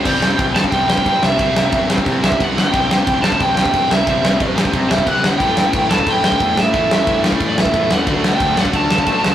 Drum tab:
CC |x---x---x---x---|x---x---x---x---|x---x---x---x---|x---x---x---x---|
SD |--o---o---o---o-|--o---o---o---o-|--o---o---o---o-|--o---o---o---o-|
BD |o---o--oo--oo---|o---o--oo--oo---|o---o--oo--oo---|o---o--oo--oo---|

CC |x---x---x---x---|x---x---x---x---|x---x---x---x---|
SD |--o---o---o---o-|--o---o---o---o-|--o---o---o---o-|
BD |o---o--oo--oo---|o---o--oo--oo---|o---o--oo--oo---|